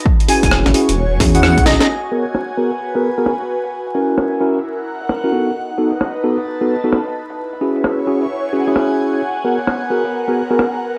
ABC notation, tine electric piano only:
X:1
M:4/4
L:1/16
Q:"Swing 16ths" 1/4=131
K:G#m
V:1 name="Tine electric piano"
z2 [CEFG]4 [CEFG] z3 [CEFG] [CEFG]4- [CEFG] | z2 [B,FGA] z3 [B,FGA] z2 [B,FGA] z [B,FGA] z4 | z2 [CEFA]4 [CEFA] z6 [CEFA] [B,DF=A] z | z2 [B,DF=A] z3 [B,DFA] z2 [B,DFA] z [B,DFA] z4 |
z2 [CEFG]4 [CEFG] z3 [CEFG] [CEFG]4- [CEFG] | z2 [B,FGA] z3 [B,FGA] z2 [B,FGA] z [B,FGA] z4 |]